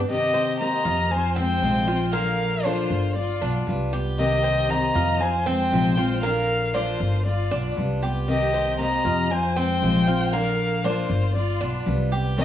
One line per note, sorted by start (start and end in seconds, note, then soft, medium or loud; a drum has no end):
0.08 0.59 C3 medium
0.08 0.59 D#3 medium
0.08 0.59 A#3 medium
0.08 0.59 C4 medium
0.08 0.57 G4 medium
0.08 0.60 G4 medium
0.08 0.57 D#5 loud
0.34 0.84 C5 medium
0.60 1.10 C3 medium
0.60 1.10 D#3 medium
0.60 1.11 A#3 medium
0.60 1.11 C4 medium
0.60 1.11 G4 medium
0.60 1.08 D#5 medium
0.60 1.13 A#5 loud
0.85 1.58 F2 medium
0.85 1.35 F4 medium
1.11 1.37 C5 medium
1.11 1.37 G#5 loud
1.11 muted steel-string acoustic guitar stroke medium
1.36 1.62 G#3 soft
1.36 1.86 C4 medium
1.36 1.62 C4 soft
1.36 1.61 F4 medium
1.36 2.10 C5 medium
1.36 2.10 G5 loud
1.62 2.84 A#1 loud
1.62 1.87 C3 medium
1.62 1.87 F3 medium
1.62 1.88 G#3 medium
1.62 1.88 C4 medium
1.62 1.87 F4 medium
1.88 2.14 G#3 soft
1.88 2.13 C4 soft
1.88 2.13 F4 medium
1.88 2.13 F4 soft
2.13 2.63 D3 medium
2.13 2.63 A#3 medium
2.13 2.64 A#3 medium
2.13 2.64 D4 medium
2.13 2.65 F4 medium
2.13 2.61 A#4 medium
2.13 2.66 F5 loud
2.64 3.15 D3 medium
2.64 3.15 A#3 medium
2.64 2.90 D4 medium
2.64 3.16 D4 medium
2.64 3.15 F4 medium
2.64 3.16 F4 medium
2.64 3.15 C5 medium
2.90 3.38 G1 medium
3.16 3.64 F4 medium
3.16 3.64 D5 medium
3.16 muted steel-string acoustic guitar stroke medium
3.41 3.66 B1 medium
3.41 3.67 B3 soft
3.41 3.91 D4 medium
3.41 3.66 F4 medium
3.67 4.89 C2 medium
3.67 3.92 G3 medium
3.67 3.92 B3 medium
3.67 3.91 F4 medium
3.93 4.18 B3 soft
3.93 4.17 F4 soft
3.93 4.43 G4 medium
4.18 4.68 C3 medium
4.18 4.69 D#3 medium
4.18 4.69 A#3 medium
4.18 4.69 C4 medium
4.18 4.66 G4 medium
4.18 4.69 G4 medium
4.18 4.72 D#5 loud
4.44 4.94 C5 medium
4.69 5.20 C3 medium
4.69 5.20 D#3 medium
4.69 5.20 A#3 medium
4.69 5.20 C4 medium
4.69 5.21 G4 medium
4.69 5.21 D#5 medium
4.69 5.22 A#5 loud
4.95 5.68 F2 loud
4.95 5.45 F4 medium
5.21 5.45 C5 medium
5.21 5.48 G#5 loud
5.21 muted steel-string acoustic guitar stroke medium
5.46 5.72 G#3 soft
5.46 5.96 C4 medium
5.46 5.72 C4 soft
5.46 5.71 F4 soft
5.46 6.23 C5 medium
5.46 6.22 G5 loud
5.72 6.94 A#1 loud
5.72 5.97 C3 medium
5.72 5.97 F3 medium
5.72 5.97 G#3 medium
5.72 5.97 C4 medium
5.72 5.96 F4 medium
5.97 6.23 G#3 soft
5.97 6.23 C4 soft
5.97 6.23 F4 medium
5.97 6.22 F4 medium
6.23 6.73 D3 medium
6.23 6.73 A#3 medium
6.23 6.74 A#3 medium
6.23 6.74 D4 medium
6.23 6.74 F4 medium
6.23 6.71 A#4 medium
6.23 6.76 F5 loud
6.74 7.25 D3 medium
6.74 7.25 A#3 medium
6.74 6.99 D4 medium
6.74 7.25 D4 medium
6.74 7.25 F4 medium
6.74 7.26 C5 medium
7.00 7.48 G1 medium
7.25 7.74 F4 medium
7.25 7.74 D5 medium
7.25 muted steel-string acoustic guitar stroke medium
7.51 7.75 B1 medium
7.51 7.76 B3 soft
7.51 8.01 D4 medium
7.51 7.76 F4 medium
7.76 8.98 C2 medium
7.76 8.01 G3 medium
7.76 8.02 B3 medium
7.76 8.00 F4 medium
8.02 8.28 B3 soft
8.02 8.27 F4 medium
8.02 8.52 G4 medium
8.28 8.77 C3 medium
8.28 8.78 D#3 medium
8.28 8.78 A#3 medium
8.28 8.79 C4 medium
8.28 8.76 G4 medium
8.28 8.79 G4 medium
8.28 8.76 D#5 loud
8.54 9.04 C5 medium
8.79 9.29 C3 medium
8.79 9.29 D#3 medium
8.79 9.30 A#3 medium
8.79 9.29 C4 medium
8.79 9.30 G4 medium
8.79 9.27 D#5 medium
8.79 9.33 A#5 loud
9.05 9.78 F2 medium
9.05 9.54 F4 medium
9.30 9.55 C5 medium
9.30 9.58 G#5 loud
9.30 muted steel-string acoustic guitar stroke medium
9.55 9.81 G#3 soft
9.55 10.06 C4 medium
9.55 9.81 C4 medium
9.55 9.80 F4 soft
9.55 10.33 C5 medium
9.55 10.35 G5 loud
9.81 11.03 A#1 medium
9.81 10.06 C3 medium
9.81 10.06 F3 medium
9.81 10.07 G#3 medium
9.81 10.07 C4 medium
9.81 10.06 F4 medium
10.07 10.33 G#3 soft
10.07 10.32 C4 soft
10.07 10.32 F4 soft
10.07 10.32 F4 medium
10.33 10.83 D3 medium
10.33 10.83 A#3 medium
10.33 10.84 D4 medium
10.33 10.84 F4 medium
10.33 10.84 A#4 medium
10.33 10.86 F5 loud
10.84 11.34 D3 medium
10.84 11.35 A#3 medium
10.84 11.09 D4 medium
10.84 11.35 D4 medium
10.84 11.33 F4 medium
10.84 11.35 F4 medium
10.84 11.35 C5 medium
11.10 11.57 G1 medium
11.34 11.82 F4 medium
11.34 11.83 D5 medium
11.34 muted steel-string acoustic guitar stroke medium
11.60 11.85 B1 medium
11.60 11.86 B3 soft
11.60 12.10 D4 medium
11.60 11.85 F4 medium
11.86 12.45 C2 medium
11.86 12.11 G3 medium
11.86 12.11 B3 medium
11.86 12.10 F4 medium
12.11 12.37 B3 soft
12.11 12.36 F4 medium
12.11 12.45 G4 medium
12.37 12.45 C3 medium
12.37 12.45 D#3 medium
12.37 12.45 A#3 medium
12.37 12.45 C4 medium
12.37 12.45 G4 medium
12.37 12.45 D#5 loud